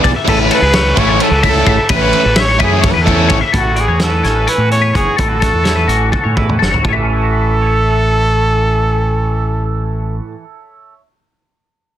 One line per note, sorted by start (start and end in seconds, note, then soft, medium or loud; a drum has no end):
0.00 0.14 B1 medium
0.00 0.11 E3 medium
0.00 0.10 B3 medium
0.00 0.10 D4 medium
0.00 0.10 G#4 medium
0.00 0.15 D5 medium
0.04 kick medium
0.04 ride medium
0.16 0.27 E5 medium
0.25 0.49 A1 loud
0.25 0.56 E3 loud
0.25 0.56 A3 medium
0.25 0.56 C#4 loud
0.25 0.57 E4 loud
0.25 0.39 A4 loud
0.25 0.51 B4 medium
0.25 kick loud
0.25 crash loud
0.51 0.62 A4 medium
0.51 1.00 B4 loud
0.51 ride medium
0.62 0.94 C#2 medium
0.62 0.73 G#4 medium
0.73 0.98 C#5 medium
0.73 snare loud
0.73 ride loud
0.96 1.18 A1 loud
0.96 1.27 E3 medium
0.96 1.27 A3 medium
0.96 1.27 C#4 medium
0.96 1.26 E4 loud
0.96 1.09 B4 medium
0.96 1.23 C#5 medium
0.96 kick medium
0.96 ride medium
1.09 1.19 C#5 medium
1.19 1.44 A4 medium
1.19 1.43 B4 medium
1.19 ride loud
1.31 1.63 C#2 medium
1.43 1.74 E3 medium
1.43 1.74 A3 medium
1.43 1.74 C#4 medium
1.43 1.74 E4 medium
1.43 1.55 E5 medium
1.43 kick medium
1.43 ride medium
1.49 1.89 A4 loud
1.55 1.67 D5 medium
1.66 1.77 A1 medium
1.66 1.89 E5 medium
1.66 kick medium
1.66 ride medium
1.89 2.11 A1 loud
1.89 2.20 E3 loud
1.89 2.20 A3 medium
1.89 2.21 C#4 medium
1.89 2.21 E4 medium
1.89 2.01 B4 medium
1.89 kick loud
1.89 ride loud
1.95 2.41 B4 loud
2.01 2.14 C#5 medium
2.13 2.36 A4 medium
2.13 ride medium
2.25 2.57 A1 medium
2.36 2.48 E5 medium
2.36 snare loud
2.36 ride loud
2.40 2.62 C#5 loud
2.49 2.59 C#5 medium
2.59 2.92 F#2 loud
2.59 2.91 E3 medium
2.59 2.90 A3 medium
2.59 2.90 C#4 medium
2.59 2.90 E4 loud
2.59 2.87 G#4 medium
2.59 2.81 B4 medium
2.59 kick medium
2.59 ride medium
2.82 2.93 C#5 medium
2.82 kick loud
2.82 ride loud
2.86 2.93 A4 medium
2.91 3.03 B4 medium
2.91 3.04 B4 medium
2.96 3.28 E2 medium
3.01 3.38 A4 medium
3.01 3.27 C#5 medium
3.06 3.38 E3 medium
3.06 3.37 A3 medium
3.06 3.37 C#4 medium
3.06 3.37 E4 medium
3.06 kick medium
3.06 ride medium
3.28 3.41 A1 loud
3.28 3.41 C#5 medium
3.28 kick medium
3.28 ride medium
3.41 3.53 E5 medium
3.52 3.86 A1 medium
3.52 4.71 A2 medium
3.52 4.01 E4 medium
3.52 3.76 A4 medium
3.52 kick loud
3.52 closed hi-hat medium
3.57 3.82 F#4 medium
3.76 4.48 F#4 medium
3.76 3.88 D5 medium
3.76 closed hi-hat medium
3.80 4.05 G#4 medium
3.88 4.21 E2 medium
3.88 3.99 C#5 medium
3.99 4.48 E4 medium
3.99 4.23 B4 medium
3.99 snare loud
3.99 closed hi-hat medium
4.04 4.50 A4 medium
4.23 4.46 A1 medium
4.23 5.88 E3 medium
4.23 5.89 C#4 soft
4.23 4.35 C#5 medium
4.23 snare soft
4.23 closed hi-hat soft
4.35 4.47 B4 medium
4.47 4.60 E4 medium
4.47 4.71 B4 medium
4.47 4.70 C#5 medium
4.47 closed hi-hat medium
4.58 4.91 A2 medium
4.58 4.94 F#4 medium
4.70 5.18 E2 medium
4.70 5.18 E4 soft
4.70 4.81 A4 medium
4.70 4.97 C#5 loud
4.70 closed hi-hat soft
4.82 4.93 B4 medium
4.94 5.06 F#1 medium
4.94 5.21 F#4 medium
4.94 5.18 G#4 medium
4.94 5.18 C#5 medium
4.94 kick medium
4.94 closed hi-hat soft
5.17 5.51 A1 medium
5.17 6.37 A2 medium
5.17 5.66 E4 medium
5.17 5.28 A4 medium
5.17 6.56 A4 medium
5.17 kick loud
5.17 closed hi-hat medium
5.28 5.40 F#4 medium
5.40 6.13 F#4 medium
5.40 5.65 A4 medium
5.40 kick medium
5.40 snare soft
5.40 closed hi-hat medium
5.53 5.86 E2 medium
5.64 5.75 C#5 medium
5.64 snare loud
5.64 closed hi-hat medium
5.68 6.36 E4 medium
5.76 5.88 B4 medium
5.88 6.10 A1 medium
5.88 6.92 E3 medium
5.88 6.81 C#4 soft
5.88 6.12 F#4 medium
5.88 closed hi-hat medium
6.12 6.61 F#4 medium
6.12 6.24 A4 medium
6.12 kick medium
6.12 high tom soft
6.24 6.57 A2 medium
6.24 6.36 C#5 medium
6.36 6.84 E2 medium
6.36 6.81 E4 medium
6.36 6.60 B4 medium
6.36 kick medium
6.49 mid tom medium
6.59 6.72 F#1 medium
6.59 6.82 F#4 medium
6.59 6.71 A4 medium
6.59 snare medium
6.71 6.83 C#5 medium
6.71 floor tom medium
6.83 10.19 A1 medium
6.83 10.34 A2 medium
6.83 10.17 A4 medium
6.83 10.19 A4 medium
6.83 kick medium
6.89 6.96 C#5 medium
6.89 10.27 E5 medium
6.93 10.43 E3 medium
6.93 10.31 A5 medium
7.03 7.54 C#4 medium
7.13 7.61 E4 medium
7.23 7.66 F#4 soft
7.54 10.93 A4 medium
7.61 11.00 C#5 medium
7.67 11.06 E5 medium